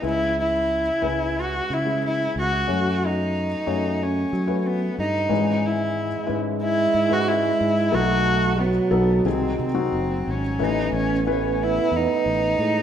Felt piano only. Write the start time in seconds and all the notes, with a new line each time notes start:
0.02 C#2 C#3 G#3 C#4 E4 B4
1.02 G#3 C#4 E4 B4
1.85 G#3 C#4 E4 G#4
2.67 F#3 A3 C#4 F#4 C#5
3.66 A3 C#4 F#4 C#5
4.47 A3 C#4 F#4 B4
5.29 G#1 G#2 E3 G#3 C#4 B4
6.27 G#3 C#4 E4 B4
7.09 G#3 C#4 E4 B4
7.91 B1 B2 F#3 B3 D#4 A4
8.91 F#3 B3 D#4 A4
9.26 C2 D#3 F#3 C4 D#4 G#4
9.74 F#3 C4 D#4 F#4
10.59 A1 A2 E3 A3 C#4 B4
11.26 E3 A3 C#4 B4